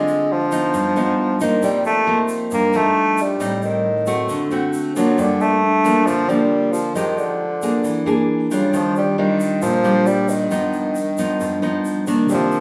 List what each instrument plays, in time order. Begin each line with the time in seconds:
Already playing: nylon-string guitar D3 G#3 C4 F4, bassoon G#3
0.08 shaker
0.32 bassoon F3
0.52 nylon-string guitar F3 B3 D#4, shaker
0.74 nylon-string guitar G2, shaker
0.96 nylon-string guitar F3 B3 D#4, shaker
1.40 bassoon D#3, nylon-string guitar F3 A#3 D#4, shaker
1.62 nylon-string guitar C3, bassoon G3, shaker
1.84 bassoon A3, shaker
2.07 nylon-string guitar F3 A#3 D#4
2.28 shaker
2.51 nylon-string guitar G2, bassoon A#3, shaker
2.73 nylon-string guitar F3 D#4, bassoon A3, shaker
3.17 bassoon G3, shaker
3.40 nylon-string guitar A2 G3 C4 D#4, shaker
3.62 bassoon D#3, shaker
4.06 nylon-string guitar A3 C4 F#4, shaker
4.29 nylon-string guitar D3, shaker
4.51 nylon-string guitar A3 C4 F#4, shaker
4.73 shaker
4.96 nylon-string guitar F3 A#3 D4, bassoon F#3, shaker
5.18 nylon-string guitar G2, bassoon D3, shaker
5.40 bassoon A3, shaker
5.84 nylon-string guitar F3 A#3 D4, shaker
6.07 nylon-string guitar D3, bassoon F3, shaker
6.28 nylon-string guitar F3 A#3 D4, bassoon G3, shaker
6.72 bassoon F3, shaker
6.95 bassoon D#3, nylon-string guitar F3 G#3 D#4 G4, shaker
7.17 bassoon D3, shaker
7.62 nylon-string guitar A#3 D4 G#4, shaker
7.84 nylon-string guitar E3, shaker
8.06 nylon-string guitar A#3 D4 G#4, shaker
8.51 bassoon C#3, nylon-string guitar G3 D4 F4, shaker
8.73 nylon-string guitar D#3, bassoon F3, shaker
8.96 bassoon G3, shaker
9.18 bassoon D#3, nylon-string guitar G3 D4 F4
9.40 shaker
9.62 nylon-string guitar A#2, bassoon F3, shaker
9.84 nylon-string guitar G3 D4 F4, shaker
10.06 bassoon G3, shaker
10.29 bassoon D#3, shaker
10.51 nylon-string guitar G2 F3 B3 D#4, shaker
10.73 shaker
10.95 shaker
11.18 nylon-string guitar F3 B3 D#4, shaker
11.40 nylon-string guitar G2, shaker
11.62 nylon-string guitar F3 B3 D#4, shaker
11.85 shaker
12.07 nylon-string guitar D#3 A#3 D4, shaker
12.26 grand piano C3 G4, nylon-string guitar C3, shaker
12.30 bassoon F3, grand piano A#4 D5
12.52 shaker